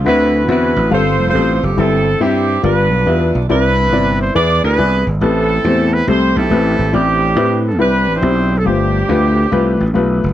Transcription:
0.05 D2 D3 C4 E4 F#4 B4 E5
0.48 E2 C4 E4 F#4 B4 E5
0.76 A1
0.90 G1 G2 C4 F4 G4 A4 C5 F5
1.20 F1
1.28 F4 A4 C5
1.33 A1 C4 G4 A4 C5
1.63 F#1 G4
1.77 G1 G2 C4 E4 G4 A4 E5
2.20 G2 C4 E4 G4 E5
2.63 G1 G2 B3 D4 F4 G4 B4 D5
2.91 B1
3.06 E2 B3 F4 G4 E5
3.35 B1
3.49 C2 C3 C4 D4 E4 B4 D5
3.92 G1 C4 E4 B4 D5
4.22 C5
4.35 E2 E3 B3 E4 G#4 B4 D5
4.63 D2 D4 G#4 B4
4.78 C2 B3 E4 G#4 D5
5.07 G#1
5.21 A1 A2 A3 C4 E4 G4 A4 B4
5.64 E2 A3 C4 G4 C5
5.94 B4
6.07 C2 A3 C4 E4 G4 A4 C5
6.36 B1 C4 E4 A4
6.50 A1 A3 C4 G4 B4
6.79 G#1
6.93 A1 A2 C4 D4 E4 G4 D5
7.36 A2 C4 E4 G4 B4
7.65 A4
7.79 C2 C4 D4 E4 G4 B4
8.08 A1
8.15 E4 G4 C5
8.22 B1 C4 E4 G4 C5
8.59 A4
8.65 G1 G2 A3 C4 D4 F4 G4 C5
9.08 D2 A3 F4 G4 B4
9.51 C2 A3 F4 G4 B4
9.80 A1
9.94 B1 A3 F4 G4 B4
10.24 F#1

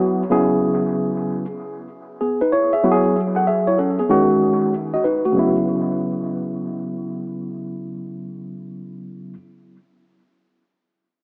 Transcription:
Already playing: F#3 B3 E4 F#4
0.30 C#3 F#3 B3 E4 G#4
2.21 B3 G#4
2.41 D#4 B4
2.52 E4 C#5
2.73 G#4 E5
2.83 F#3 B3 E4 F#4
2.92 G#4
3.36 A4 F#5
3.47 G#4 E5
3.67 E4 C#5
3.78 C#4 A4
3.99 B3 G#4
4.09 D#3 G#3 C#4 F#4
4.94 F#4 D#5
5.04 D#4 B4
5.25 A3 F#4
5.32 C#3 F#3
5.37 B3 E4

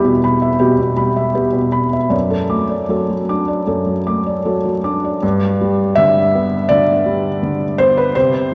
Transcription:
Already playing: E2 G3 B3 G4 E5 B5
0.04 B2
0.24 B5
0.42 E5
0.59 B2 G4
0.79 B2
0.96 G3 B5
1.16 E5
1.35 B3 G4
1.53 B2
1.72 B5
1.93 E5
2.10 F#2 D5
2.30 A4
2.50 A3 D6
2.69 D5
2.89 F#3 A4
3.10 F#3
3.29 D4 D6
3.48 D5
3.67 F#2 A4
3.86 F#3
4.07 A3 D6
4.26 D5
4.45 F#3 A4
4.65 F#3
4.84 D4 D6
5.04 D5
5.22 G2
5.61 G3
5.96 D3 E5
6.35 B3
6.69 D3 D5
7.06 G3
7.43 D3
7.78 B3 C5
7.97 B4
8.15 C3 C5

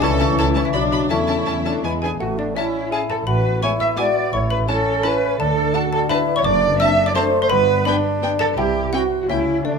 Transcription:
0.01 C#2 C#3 E3 C#4 E4 A4 A5 C#6
0.11 A3
0.20 C#4 E4 A5
0.29 E4
0.37 C#2 C#4 E4 A4 A5
0.47 C#5
0.55 C#4 E4 E5 A5
0.65 E4 E5 A5
0.74 B1 B2 F#3 D4 F#4 D5 B5 D6
0.83 F#3
0.91 D4 F#4 B5
1.01 F#4
1.10 E2 E3 A3 C#4 E4 A4 E5 A5 C#6
1.20 C#4
1.28 C#4 E4 A5
1.38 A4
1.46 E2 C#4 E4 C#5 A5
1.56 E5
1.65 C#4 D4 E4 A5
1.74 C#6
1.83 E2 E3 G#3 B3 E4 G#4 G#5 B5
1.92 B3
2.01 B3 D4 E4 G#4 G#5
2.11 G#4
2.19 A1 A2 A3 F#4 F#5
2.37 C#4 D4 D5
2.55 C#4 E4 A4 E5 A5
2.73 C#5
2.91 C#4 E4 G#4 E5 G#5 A5
3.09 A4 C#5 A5
3.26 A1 A2 F#4 B4 B5
3.45 B3
3.62 G#3 B3 E4 G#4 C#5 G#5 C#6
3.80 B4 E5 E6
3.96 G#3 B3 E4 F#4 D5 E5 G#5 D6
4.16 B4
4.33 A1 A2 E4 C#5 C#6
4.50 C#4 B4 B5
4.68 C#4 E4 A4 A5
4.86 C#5
5.03 C#4 E4 B4 E5 A5 B5
5.22 C#5
5.38 D2 D3 D4 A4 A5
5.57 D4
5.74 D4 F#4 A4 A5
5.92 A4 D5 A5
6.09 D4 E4 F#4 B4 F#5 A5 B5
6.27 D5
6.36 C#5 C#6
6.44 F#1 F#2 D4 D5 D6
6.63 C4
6.80 C4 D4 A4 E5 A5 E6
6.98 C5
7.06 D5 D6
7.15 A3 C4 D4 C5 D5 A5 C6
7.33 C5
7.42 C5 C6
7.50 G1 G2 B3 B4 B5
7.68 B3
7.85 B3 D4 G4 B4 G5 B5
8.04 B4
8.22 B3 D4 D5 G5
8.39 A4 B4 A5
8.57 C2 C3 E4 G4 G5
8.75 C4
8.93 C4 E4 F#4 F#5 G5
9.11 C5
9.22 F#4
9.28 C#2 C#3 A#3 C#4 E4 G4 E5 G5
9.48 E4 G4
9.64 D2 D3 A3 D4 D5

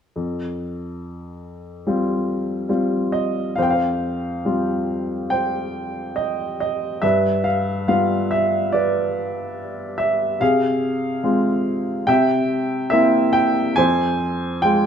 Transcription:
0.16 F2
1.87 G3 C4 F4
2.69 G3 C4 F4
3.12 D#5
3.56 F2 C5 F5
3.62 G5
3.70 C5 F5
4.45 G3 C4 F4
5.30 C5 G5
6.16 D#5
6.60 D#5
7.02 G2 B4 E5
7.44 F5
7.88 G3 B3 F4 F5
8.31 E5
8.72 B4 D5
9.98 E5
10.40 C3 G#4 F5
11.23 G#3 C4 F4
12.07 C3 E5 G5
12.90 A#3 C4 E4 E5
13.33 G5
13.76 F2 C5 G#5
14.62 G#3 F4 G5

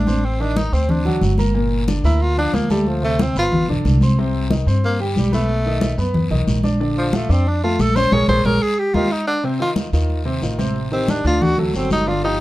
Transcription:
Already playing: A1 D4
0.07 C4 C5 C6, high conga, short guiro
0.24 C4, high conga, long guiro
0.40 D#3 D4 D#4 D#5, high conga
0.56 D#4, high conga, short guiro
0.72 D2 C4 C5 C6, high conga, short guiro
0.89 D4, high conga, low conga, long guiro
1.05 F#3 F#4 F#5, high conga, low conga
1.21 G1, high conga, short guiro
1.38 A#3 A#4 A#5, high conga, short guiro
1.54 A#2 A#3 A#4, high conga, long guiro
1.72 high conga
1.88 D3 D4 D5, high conga, short guiro
2.04 D2 A#3 E4 A#4 A#5, high conga, short guiro
2.20 F4, high conga, long guiro
2.37 F3 D4 F4 F5, high conga
2.52 D2 A#3, high conga, short guiro
2.70 G3 A3 A4 A5, high conga, short guiro
2.86 F3, high conga, long guiro
3.02 C3 A3 C4 C5, high conga
3.19 C4, high conga, short guiro
3.35 G1 B3 F4 B4 B5, high conga, short guiro
3.52 high conga, low conga, long guiro
3.68 B1 D3 D4 D5, high conga, low conga
3.85 C2, high conga, short guiro
4.01 C4 C5 C6, high conga, short guiro
4.18 C3 C4 C5, high conga, long guiro
4.34 high conga
4.50 D#3 D#4 D#5, high conga, short guiro
4.67 G2 C4 C5 C6, high conga, short guiro
4.84 A#3, high conga, long guiro
5.00 D3 G3 G4 G5, high conga
5.16 B1 G3, high conga, short guiro
5.32 A3 B3 B4 B5, high conga, short guiro
5.49 high conga, long guiro
5.65 D#3 D#4 D#5, high conga
5.81 high conga, short guiro
5.98 F#2 B3 B4 B5, high conga, short guiro
6.14 high conga, low conga, long guiro
6.30 B1 D#3 D#4 D#5, high conga, low conga
6.47 A#1, high conga, short guiro
6.63 D4 D5 D6, high conga, short guiro
6.80 D3 D4 D5, high conga, long guiro
6.97 F3, high conga
7.13 F3 A3 F4 F5, high conga, short guiro
7.29 F2 C4 D4 D5 D6, high conga, short guiro
7.46 D4, high conga, long guiro
7.63 A3 F4 A4 A5, high conga
7.79 A#1 A4, high conga, short guiro
7.96 C#4 C5 C#5 C#6, high conga, short guiro
8.12 A#1 G#4 A#4 C#5, high conga, long guiro
8.28 A#1 G#4 A#4 C5 C#5, high conga, long guiro
8.45 A#1 G#4 A#4 C#5, high conga, long guiro
8.63 G#4
8.79 G4
8.94 D#2 D#4 F4 G4 A#4, high conga, long guiro
9.12 D#4
9.27 D4
9.44 C3 C4 C5, high conga, long guiro
9.60 D#3 D#4 F4, high conga
9.76 high conga, short guiro
9.93 D#2 D#3 D#4 F4, short guiro
10.09 high conga, long guiro
10.25 C3 C4 C5, high conga
10.42 A1 D#3 D#4 F4, high conga, short guiro
10.59 C3 C4 C5, high conga, short guiro
10.75 high conga, long guiro
10.91 D#3 C4 D#4 G4, high conga
11.08 D4, high conga, short guiro
11.24 D2 D3 D4 F4 D5, high conga, short guiro
11.41 F#4, high conga, low conga, long guiro
11.58 F#3 A3 F#4 A4, high conga, low conga
11.73 G1 F#3 C4 F#4 A4, high conga, short guiro
11.91 D#4, high conga, short guiro
12.07 D3 D4 F4 D5, high conga, long guiro
12.24 F3 D#4 F4 G4, high conga

